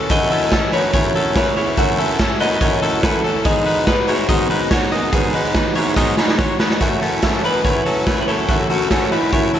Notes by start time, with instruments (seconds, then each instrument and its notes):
Already playing: clean electric guitar C#4 A4
0.09 twelve-string acoustic guitar F#2 C#3 E3 A3 E4, baritone saxophone F#2, string section E3 A3 C#4 F#4, clean electric guitar A3 F#4 D#5, kick, hi-hat pedal, ride
0.30 twelve-string acoustic guitar E3 A3 E4, clean electric guitar C#4 A4, open hi-hat
0.51 twelve-string acoustic guitar C#3 E3 A3 E4, clean electric guitar C#4 A4, kick, snare, hi-hat pedal, ride
0.72 baritone saxophone F#2, twelve-string acoustic guitar E3 A3 E4, clean electric guitar D#4 B4 C#5, open hi-hat
0.93 twelve-string acoustic guitar F#2 C#3 E3 A3 E4, baritone saxophone F#2, clean electric guitar E4 C#5, kick, hi-hat pedal, ride
1.14 baritone saxophone F#2, twelve-string acoustic guitar E3 A3 E4, clean electric guitar C#4 A4, open hi-hat
1.35 baritone saxophone F#2, twelve-string acoustic guitar C#3 E3 A3 E4, clean electric guitar E4 B4 C#5, kick, snare, hi-hat pedal, ride
1.56 baritone saxophone E2, twelve-string acoustic guitar E3 A3 E4, clean electric guitar E4 C#5, open hi-hat
1.77 twelve-string acoustic guitar F#2 C#3 E3 A3 E4, baritone saxophone F#2, clean electric guitar A3 F#4 E5, kick, hi-hat pedal, ride
1.98 twelve-string acoustic guitar E3 A3 E4, clean electric guitar C#4 A4, open hi-hat
2.19 twelve-string acoustic guitar C#3 E3 A3 E4, clean electric guitar C#4 A4, kick, snare, hi-hat pedal, ride
2.40 baritone saxophone F#2, twelve-string acoustic guitar E3 A3 E4, clean electric guitar D#4 B4 D#5, open hi-hat
2.61 twelve-string acoustic guitar F#2 C#3 E3 A3 E4, baritone saxophone F#2, clean electric guitar E4 C#5, kick, hi-hat pedal, ride
2.82 baritone saxophone F#2, twelve-string acoustic guitar E3 A3 E4, clean electric guitar C#4 A4, open hi-hat
3.03 baritone saxophone F#2, twelve-string acoustic guitar C#3 E3 A3 E4, clean electric guitar E4 A4 B4, kick, snare, hi-hat pedal, ride
3.24 baritone saxophone F#2, twelve-string acoustic guitar E3 A3 E4, clean electric guitar C#4 A4, open hi-hat
3.45 twelve-string acoustic guitar G#2 D#3 F#3 B3 D#4, baritone saxophone G#2, string section D#3 G#3 B3, clean electric guitar B3 G#4 D#5, kick, hi-hat pedal, ride
3.65 twelve-string acoustic guitar F#3 B3 D#4, clean electric guitar D#4 B4, open hi-hat
3.86 twelve-string acoustic guitar D#3 F#3 B3 D#4, clean electric guitar D#4 B4, kick, snare, hi-hat pedal, ride
4.07 baritone saxophone G#2, twelve-string acoustic guitar F#3 B3 D#4, clean electric guitar E4 F#4 C#5, open hi-hat
4.29 twelve-string acoustic guitar G#2 D#3 F#3 B3 D#4, baritone saxophone G#2, clean electric guitar F#4 D#5, kick, hi-hat pedal, ride
4.50 baritone saxophone G#2, twelve-string acoustic guitar F#3 B3 D#4, clean electric guitar D#4 B4, open hi-hat
4.71 baritone saxophone G#2, twelve-string acoustic guitar D#3 F#3 B3 D#4, clean electric guitar F#4 C#5, kick, snare, hi-hat pedal, ride
4.91 baritone saxophone F#2, twelve-string acoustic guitar F#3 B3 D#4, clean electric guitar F#4 D#5, open hi-hat
5.13 twelve-string acoustic guitar G#2 D#3 F#3 B3 D#4, baritone saxophone G#2, clean electric guitar B3 G#4, kick, hi-hat pedal, ride
5.34 twelve-string acoustic guitar F#3 B3 D#4, clean electric guitar D#4 B4, open hi-hat
5.54 twelve-string acoustic guitar D#3 F#3 B3 D#4, clean electric guitar D#4 B4, kick, snare, hi-hat pedal, ride
5.75 baritone saxophone G#2, twelve-string acoustic guitar F#3 B3 D#4, clean electric guitar E4 C#5, open hi-hat
5.96 twelve-string acoustic guitar G#2 D#3 F#3 B3 D#4, baritone saxophone G#2, clean electric guitar F#4 D#5, kick, snare
6.17 baritone saxophone G#2, twelve-string acoustic guitar F#3 B3 D#4, clean electric guitar D#4 B4, snare
6.28 snare
6.38 baritone saxophone G#2, twelve-string acoustic guitar D#3 F#3 B3 D#4, clean electric guitar F#4 C#5, kick, snare
6.59 twelve-string acoustic guitar F#3 B3 D#4, clean electric guitar D#4 B4, snare
6.70 snare
6.80 twelve-string acoustic guitar F#2 C#3 E3 A3 E4, baritone saxophone F#2, string section E3 A3 C#4 F#4, clean electric guitar A3 F#4, kick, closed hi-hat
7.01 baritone saxophone F#2, twelve-string acoustic guitar E3 A3 E4, clean electric guitar C#4 A4, open hi-hat
7.22 twelve-string acoustic guitar F#2 C#3 E3 A3 E4, baritone saxophone F#2, clean electric guitar C#4 A4, kick, snare, closed hi-hat
7.43 baritone saxophone F#2, twelve-string acoustic guitar E3 A3 E4, clean electric guitar D#4 B4, open hi-hat
7.64 baritone saxophone F#2, twelve-string acoustic guitar C#3 E3 A3 E4, clean electric guitar E4 C#5, kick, closed hi-hat
7.85 twelve-string acoustic guitar E3 A3 E4, baritone saxophone F#3, clean electric guitar C#4 A4, open hi-hat
8.06 twelve-string acoustic guitar F#2 C#3 E3 A3 E4, baritone saxophone F#2, clean electric guitar E4 B4, kick, snare, closed hi-hat
8.21 clean electric guitar B4
8.27 baritone saxophone F#2, twelve-string acoustic guitar E3 A3 E4, clean electric guitar E4 A4 C#5, open hi-hat
8.48 twelve-string acoustic guitar F#2 C#3 E3 A3 E4, baritone saxophone F#2, clean electric guitar A3 F#4, kick, closed hi-hat
8.70 baritone saxophone F#2, twelve-string acoustic guitar E3 E4, clean electric guitar C#4 F#4 A4, open hi-hat
8.91 twelve-string acoustic guitar F#2 C#3 E3 A3 E4, baritone saxophone F#2, clean electric guitar C#4 A4, kick, snare, closed hi-hat
9.11 baritone saxophone F#2, twelve-string acoustic guitar E3 A3 E4, clean electric guitar D#4 E4 B4, open hi-hat
9.32 baritone saxophone F#2, twelve-string acoustic guitar C#3 E3 A3 E4, clean electric guitar E4 C#5, kick, closed hi-hat
9.54 twelve-string acoustic guitar E3 A3 E4, baritone saxophone F#3, clean electric guitar C#4 A4, open hi-hat